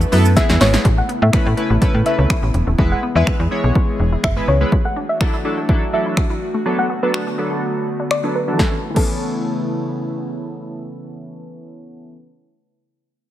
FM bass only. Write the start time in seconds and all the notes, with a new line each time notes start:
0.13 F#2
0.50 E2
0.61 G#1
0.85 A1
1.22 A2
1.34 A2
1.46 A2
1.70 A1
1.82 A2
1.94 A2
2.19 C#2
2.43 A1
2.54 E1
2.67 D#1
2.79 E1
3.15 E2
3.40 E2
3.64 B1
4.00 E1
4.24 F#1
4.48 C#2